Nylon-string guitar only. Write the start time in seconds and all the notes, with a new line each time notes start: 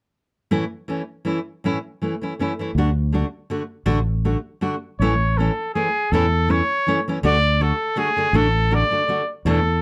0.51 A2 E3 A3 C#4 E4
0.88 E3 A3 C#4 E4
1.25 E3 A3 C#4 E4
1.64 A2 E3 A3 C#4 E4
2.02 E3 A3 C#4 E4
2.21 E3 A3 C#4 E4
2.39 E3 A3 C#4 E4
2.59 E3 A3 C#4 E4
2.78 D3 A3 D4 F#4
3.13 D3 A3 D4 F#4
3.50 D3 A3 D4 F#4
3.86 D3 A3 D4 F#4
4.25 D3 A3 D4 F#4
4.61 D3 A3 D4 F#4
5.02 A2 E3 A3 C#4 E4
5.39 E3 A3 C#4 E4
5.75 E3 A3 C#4 E4
6.13 A2 E3 A3 C#4 E4
6.48 E3 A3 C#4 E4
6.87 E3 A3 C#4 E4
7.08 E3 A3 C#4 E4
7.23 D3 A3 D4 F#4
7.60 D3 A3 D4 F#4
7.96 D3 A3 D4 F#4
8.16 D3 A3 D4 F#4
8.34 D3 A3 D4 F#4
8.71 D3 A3 D4 F#4
8.90 D3 A3 D4 F#4
9.08 D3 A3 D4 F#4
9.46 E2 B2 E3 A3 D4 E4